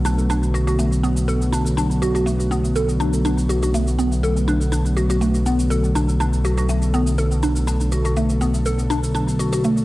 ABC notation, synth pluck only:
X:1
M:4/4
L:1/16
Q:"Swing 16ths" 1/4=122
K:Bm
V:1 name="Synth pluck"
D z D z F F A, z B, z A z D z D z | F F A, z B, z A z D z D z F F A, z | B, z A z D z D z F F A, z B, z A z | D z D z F F A, z B, z A z D z D z |
F F A, z B, z A z D z D z F F A, z |]